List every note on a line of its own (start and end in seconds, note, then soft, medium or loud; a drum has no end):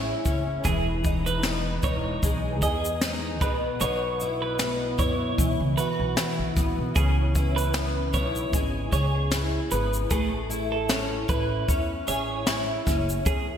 0.00 0.11 A1 medium
0.00 0.65 A3 medium
0.00 0.23 C#4 medium
0.00 1.04 E4 medium
0.00 2.62 G#4 medium
0.25 0.58 F#1 medium
0.25 0.73 C#4 medium
0.25 kick medium
0.25 shaker soft
0.64 1.79 E1 medium
0.64 3.42 E3 medium
0.64 0.86 G#4 medium
0.64 kick medium
0.64 shaker medium
1.04 1.82 D#4 medium
1.04 kick medium
1.04 shaker soft
1.26 1.43 B4 medium
1.26 shaker soft
1.43 4.59 B3 medium
1.43 snare medium
1.43 shaker medium
1.83 2.16 E1 medium
1.83 3.01 D#4 medium
1.83 2.21 C#5 medium
1.83 kick medium
1.83 shaker soft
2.23 2.62 B1 medium
2.23 3.50 G#3 medium
2.23 kick medium
2.23 shaker medium
2.62 3.41 E2 medium
2.62 3.50 G#4 medium
2.62 3.00 D#5 medium
2.62 kick medium
2.62 shaker soft
2.85 shaker medium
3.01 3.50 D#4 medium
3.01 snare loud
3.01 shaker medium
3.41 3.74 B1 medium
3.41 3.80 B2 medium
3.41 3.62 B4 medium
3.41 kick medium
3.41 shaker soft
3.81 4.95 B1 medium
3.81 6.95 B2 medium
3.81 4.02 C#5 medium
3.81 shaker medium
4.20 4.99 E4 medium
4.20 shaker soft
4.42 4.59 B4 medium
4.59 6.56 B3 medium
4.59 snare medium
4.59 shaker medium
4.99 5.31 F#2 medium
4.99 6.16 E4 soft
4.99 5.37 C#5 medium
4.99 kick medium
4.99 shaker soft
5.38 5.56 B1 medium
5.38 8.53 E3 medium
5.38 kick medium
5.38 shaker medium
5.60 5.75 C#2 medium
5.78 7.05 F#4 medium
5.78 6.35 B4 medium
5.78 shaker soft
6.00 6.14 B1 medium
6.17 7.35 E4 medium
6.17 snare medium
6.17 shaker medium
6.39 6.53 B1 medium
6.56 6.74 A1 medium
6.56 7.74 B3 medium
6.56 kick medium
6.56 snare soft
6.56 shaker soft
6.78 6.93 B1 medium
6.95 8.10 C#2 medium
6.95 10.11 C#3 medium
6.95 7.16 G#4 medium
6.95 kick loud
6.95 shaker medium
7.35 8.14 E4 soft
7.35 kick medium
7.35 shaker soft
7.56 7.73 B4 medium
7.56 shaker soft
7.74 9.70 B3 medium
7.74 snare loud
7.74 shaker medium
8.14 8.54 B1 medium
8.14 9.32 E4 medium
8.14 8.51 C#5 medium
8.14 kick medium
8.14 shaker soft
8.35 shaker soft
8.53 8.86 G#1 medium
8.53 10.10 G#3 medium
8.53 kick medium
8.53 shaker medium
8.92 9.57 C#2 medium
8.92 12.07 G#4 medium
8.92 9.30 C#5 medium
8.92 kick medium
8.92 shaker soft
9.31 10.49 E4 medium
9.31 snare medium
9.31 shaker medium
9.71 10.04 G#1 medium
9.71 10.20 B3 medium
9.71 9.92 B4 medium
9.71 shaker soft
9.94 shaker soft
10.11 11.25 A1 medium
10.11 13.26 A3 medium
10.11 10.32 G#4 medium
10.11 kick loud
10.11 shaker medium
10.50 11.29 E4 soft
10.50 shaker soft
10.72 10.89 A4 medium
10.89 11.67 C#4 medium
10.89 snare loud
10.89 shaker medium
11.29 11.62 A1 medium
11.29 12.46 E4 soft
11.29 11.67 B4 medium
11.29 kick medium
11.29 shaker soft
11.68 12.01 E2 medium
11.68 12.85 C#4 medium
11.68 kick medium
11.68 shaker medium
12.07 12.73 A1 medium
12.07 13.57 G#4 medium
12.07 12.66 C#5 medium
12.07 shaker soft
12.47 13.57 E4 medium
12.47 snare medium
12.47 shaker medium
12.86 13.19 F#1 medium
12.86 13.35 C#4 medium
12.86 kick medium
12.86 snare soft
12.86 shaker soft
13.09 shaker soft
13.26 13.57 E2 medium
13.26 13.47 G#4 medium
13.26 kick medium
13.26 shaker medium